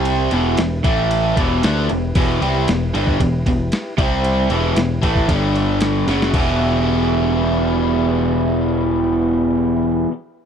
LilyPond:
<<
  \new Staff \with { instrumentName = "Tonewheel organ" } { \time 4/4 \key e \minor \tempo 4 = 114 <c' g' c''>8 <e' g' b'>4 <e' a' e''>4 <e' g' b'>4.~ | <e' g' b'>2.~ <e' g' b'>8 <c' g' c''>8~ | <c' g' c''>8 <e' g' b'>4. <d' g' d''>4. r8 | <e' g' b'>1~ |
<e' g' b'>1 | }
  \new Staff \with { instrumentName = "Overdriven electric guitar" } { \clef bass \time 4/4 \key e \minor <c g c'>8 <e, b, e>8 <e, b,>8 <a, e a>4 <e, b, e>8 <d a d'>8 <e, b,>8 | <e, b, e>8 <c g c'>8 <e, b,>8 <g, d g>8 <e, b,>8 <e, b,>8 r8 <c g c'>8~ | <c g c'>8 <e, b, e>8 <e, b,>8 <a, e a>8 <g, d g>4. <fis, cis fis>8 | <e, b, e g b g'>1~ |
<e, b, e g b g'>1 | }
  \new Staff \with { instrumentName = "Overdriven electric guitar" } { \clef bass \time 4/4 \key e \minor <c g c'>8 <e, b, e>8 <e, b,>8 <a, e a>4 <e, b, e>8 <d a d'>8 <e, b,>8 | <e, b, e>8 <c g c'>8 <e, b,>8 <g, d g>8 <e, b,>8 <e, b,>8 r8 <c g c'>8~ | <c g c'>8 <e, b, e>8 <e, b,>8 <a, e a>8 <g, d g>4. <fis, cis fis>8 | <e, b, e>1~ |
<e, b, e>1 | }
  \new Staff \with { instrumentName = "Picked electric bass" } { \clef bass \time 4/4 \key e \minor c,8 e,,8 e,,8 a,,4 e,,8 d,8 e,,8 | e,,8 c,8 e,,8 g,,8 e,,8 e,,8 r8 c,8~ | c,8 e,,8 e,,8 a,,8 g,,4. fis,,8 | e,,1~ |
e,,1 | }
  \new DrumStaff \with { instrumentName = "Drums" } \drummode { \time 4/4 cymr8 cymr8 <cymr sn>8 <bd cymr>8 cymr8 <bd cymr>8 <cymr sn>8 cymr8 | <cymc bd>8 cymr8 <cymr sn>8 cymr16 bd16 <bd cymr>8 <bd cymr>8 <cymr sn>8 <bd cymr>8 | cymr8 cymr8 <cymr sn>8 <bd cymr>16 bd16 <bd cymr>8 cymr8 <cymr sn>8 <cymr sn>16 sn16 | <cymc bd>4 r4 r4 r4 |
r4 r4 r4 r4 | }
>>